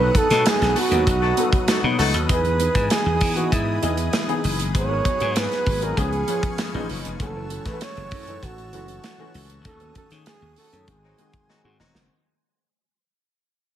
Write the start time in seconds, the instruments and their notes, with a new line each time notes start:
Already playing: grand piano F#3 B3 D#4 A4, flugelhorn B4, analog synth pad B4 F#5 D#6
0.00 clean electric guitar B3 D#4 B4
0.15 clean electric guitar B3 D#4 A4, flugelhorn A4, kick, closed hi-hat
0.30 slap bass B2, grand piano F#3 A3 B3 D#4, muted clean electric guitar stroke, snare, closed hi-hat
0.45 flugelhorn G#4, muted clean electric guitar stroke, snare, closed hi-hat
0.62 slap bass B1, snare, closed hi-hat
0.76 horn section A3 D#4 F#4 A4, clean electric guitar B3 D#4 A4, flugelhorn F#4, open hi-hat
0.91 slap bass D#2, grand piano F#3 B3 D#4 F#4, clean electric guitar B3 D#4 B4, closed hi-hat
1.07 slap bass B1, muted clean electric guitar stroke, kick, closed hi-hat
1.22 horn section A3 D#4 F#4 A4, muted clean electric guitar stroke
1.37 grand piano F#3 B3 D#4 A4, clean electric guitar B3 D#4 A4, closed hi-hat
1.53 muted clean electric guitar stroke, kick, closed hi-hat
1.68 horn section A3 D#4 F#4 A4, muted clean electric guitar stroke, snare, closed hi-hat
1.83 slap bass B2, grand piano F#3 B3 D#4 F#4, clean electric guitar B3 D#4 A4
1.98 slap bass C#2, horn section A3 D#4 F#4 A4, muted clean electric guitar stroke, open hi-hat
2.14 slap bass D#2, muted clean electric guitar stroke, closed hi-hat
2.29 slap bass E2, grand piano E3 B3 D#4 G#4, flugelhorn B4, analog synth pad D#5 G#5, kick, closed hi-hat
2.45 clean electric guitar B3 D#4 B4, closed hi-hat
2.60 clean electric guitar B3 D#4 G#4, closed hi-hat
2.75 slap bass G#2, grand piano E3 B3 D#4 G#4, kick, closed hi-hat
2.90 flugelhorn G#4, muted clean electric guitar stroke, snare, closed hi-hat
3.06 slap bass E2, muted clean electric guitar stroke
3.21 slap bass E3, clean electric guitar B3 D#4 G#4, kick, open hi-hat
3.36 grand piano E3 B3 D#4 G#4, clean electric guitar B3 D#4 B4, flugelhorn F#4, closed hi-hat
3.52 slap bass G#2, flugelhorn E4, muted clean electric guitar stroke, kick, closed hi-hat
3.67 muted clean electric guitar stroke
3.82 slap bass E2, grand piano E3 B3 G#4 D#5, clean electric guitar B3 D#4 G#4, closed hi-hat
3.97 muted clean electric guitar stroke, closed hi-hat
4.13 muted clean electric guitar stroke, snare, closed hi-hat
4.28 grand piano E3 B3 D#4 G#4, clean electric guitar B3 D#4 G#4, closed hi-hat
4.43 slap bass F#1, muted clean electric guitar stroke, open hi-hat
4.59 muted clean electric guitar stroke, closed hi-hat
4.73 slap bass G#1, grand piano F#3 B3 D#4 G#4, flugelhorn C#5, analog synth pad F#5, muted clean electric guitar stroke, kick, closed hi-hat
4.89 clean electric guitar B3 F#4 A#4
5.05 clean electric guitar B3 F#4 G#4, kick, closed hi-hat
5.20 slap bass G#2, grand piano F#3 B3 D#4 G#4, muted clean electric guitar stroke, closed hi-hat
5.36 flugelhorn B4, muted clean electric guitar stroke, snare, closed hi-hat
5.51 muted clean electric guitar stroke, snare, closed hi-hat
5.66 slap bass G#1, clean electric guitar B3 F#4 G#4, kick, open hi-hat
5.81 grand piano F#3 B3 D#4 G#4, clean electric guitar B3 F#4 A#4, flugelhorn A#4, closed hi-hat
5.97 slap bass C#2, grand piano F3 B3 C#4 G#4, flugelhorn G#4, analog synth pad F5 G#5 C#6, muted clean electric guitar stroke, kick, closed hi-hat
6.12 muted clean electric guitar stroke, closed hi-hat
6.27 grand piano F3 B3 C#4 B4, clean electric guitar B3 F4 G#4, closed hi-hat
6.43 muted clean electric guitar stroke, kick, closed hi-hat
6.58 muted clean electric guitar stroke, snare, closed hi-hat
6.73 slap bass A1, grand piano F3 B3 C#4 D#4, clean electric guitar B3 F4 G#4
6.89 slap bass F#1, muted clean electric guitar stroke, open hi-hat
7.05 slap bass F1, muted clean electric guitar stroke, closed hi-hat
7.20 slap bass F#1, grand piano E3 A3 C#4 F#4, flugelhorn A4, analog synth pad C#5 F#5 A5 E6, muted clean electric guitar stroke, kick, closed hi-hat
7.35 clean electric guitar C#4 E4 B4
7.50 clean electric guitar C#4 E4 A4, closed hi-hat
7.65 slap bass A1, grand piano E3 A3 C#4 G#4, flugelhorn B4, muted clean electric guitar stroke, kick, snare, closed hi-hat
7.73 grand piano A4
7.81 flugelhorn C#5, snare, closed hi-hat
7.97 slap bass F#1, muted clean electric guitar stroke, closed hi-hat
8.11 slap bass F#2, clean electric guitar C#4 E4 A4, kick, open hi-hat
8.27 grand piano E3 A3 C#4 D#4, clean electric guitar C#4 E4 B4, closed hi-hat
8.43 slap bass A1, flugelhorn F#4, kick, closed hi-hat
8.58 muted clean electric guitar stroke, closed hi-hat
8.73 slap bass F#1, grand piano E3 A3 C#4 F#4, clean electric guitar C#4 E4 A4, closed hi-hat
8.88 muted clean electric guitar stroke, closed hi-hat
9.04 snare, closed hi-hat
9.18 grand piano E3 A3 C#4 F#4, clean electric guitar C#4 E4 A4
9.34 slap bass C#2, muted clean electric guitar stroke, open hi-hat
9.49 muted clean electric guitar stroke, closed hi-hat
9.65 slap bass D#2, grand piano D#3 A3 C#4 F#4, flugelhorn A4, analog synth pad D#6, kick, closed hi-hat
9.80 clean electric guitar C#4 F#4 B4, closed hi-hat
9.95 clean electric guitar C#4 F#4 A4, flugelhorn A4, kick, closed hi-hat
10.10 grand piano D#3 A3 C#4 G#4, slap bass D#3, muted clean electric guitar stroke, snare, closed hi-hat
10.26 flugelhorn G#4, snare, closed hi-hat
10.42 slap bass D#2, muted clean electric guitar stroke
10.56 horn section A3 D#4 F#4 A4, clean electric guitar C#4 F#4 A4, flugelhorn A4, open hi-hat
10.72 slap bass F#2, grand piano D#3 A3 C#4 F#4, clean electric guitar C#4 F#4 B4, closed hi-hat
10.87 slap bass G#1, grand piano D#3 G#3 C4 F#4, flugelhorn G#4, analog synth pad C5 G#5, muted clean electric guitar stroke, kick, closed hi-hat
11.03 horn section F#3 C4 D#4 F#4, muted clean electric guitar stroke
11.18 grand piano D#3 G#3 C4 F#4, clean electric guitar C4 F#4 G#4, closed hi-hat
11.33 muted clean electric guitar stroke, kick, closed hi-hat
11.49 horn section F#3 C4 D#4 F#4, muted clean electric guitar stroke, snare
11.63 slap bass G#2, grand piano D#3 G#3 C4 F#4, clean electric guitar C4 F#4 G#4
11.80 slap bass E1, horn section F#3 C4 D#4 F#4, snare
11.95 slap bass F#1, snare